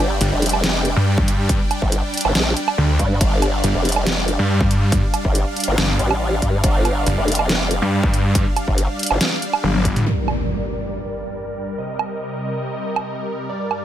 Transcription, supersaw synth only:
0.00 10.03 G3 medium
0.00 10.03 D4 medium
0.00 10.03 D5 medium
0.00 3.19 G5 medium
3.21 10.05 F5 medium
10.07 11.76 G2 medium
10.07 13.85 G3 medium
10.07 13.85 A#4 medium
10.07 11.76 D5 medium
11.78 13.48 C3 medium
11.78 13.48 D#5 medium
13.49 13.85 G2 medium
13.49 13.85 D5 medium

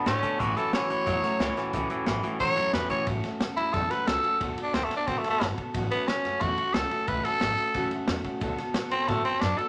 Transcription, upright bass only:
0.07 0.19 A2 medium
0.23 muted upright bass stroke medium
0.40 0.52 A1 medium
0.57 muted upright bass stroke medium
0.74 0.86 E2 medium
0.91 1.03 F#2 medium
1.07 1.19 E2 loud
1.24 muted upright bass stroke medium
1.40 1.53 C#2 medium
1.57 muted upright bass stroke medium
1.74 1.86 C#2 medium
1.90 muted upright bass stroke medium
2.07 2.19 A1 medium
2.24 muted upright bass stroke medium
2.40 2.53 E2 loud
2.57 2.69 E2 medium
2.74 2.86 E2 medium
2.90 muted upright bass stroke medium
3.07 3.19 A1 medium
3.24 muted upright bass stroke medium
3.40 3.53 E2 medium
3.58 3.70 F#2 medium
3.74 3.86 E2 loud
3.91 muted upright bass stroke medium
4.07 4.20 C#2 loud
4.24 muted upright bass stroke medium
4.41 4.53 D2 medium
4.57 muted upright bass stroke medium
4.74 4.87 D2 medium
4.91 muted upright bass stroke medium
5.08 5.20 A2 medium
5.24 5.36 A2 medium
5.41 5.53 G1 medium
5.58 muted upright bass stroke medium
5.75 5.87 A1 loud
5.91 muted upright bass stroke medium
6.08 6.20 E2 loud
6.25 6.37 F#2 medium
6.41 6.54 E2 medium
6.58 muted upright bass stroke medium
6.75 6.87 C#2 loud
6.92 muted upright bass stroke medium
7.08 7.20 C#2 medium
7.25 muted upright bass stroke medium
7.42 7.54 A1 loud
7.58 muted upright bass stroke medium
7.75 7.87 E2 loud
7.92 8.04 E2 medium
8.08 8.21 E2 medium
8.25 muted upright bass stroke medium
8.42 8.54 D2 medium
8.58 muted upright bass stroke medium
8.75 8.87 A2 medium
8.92 9.04 B2 loud
9.08 9.21 A2 loud
9.25 muted upright bass stroke medium
9.42 9.54 F#2 medium
9.59 muted upright bass stroke medium

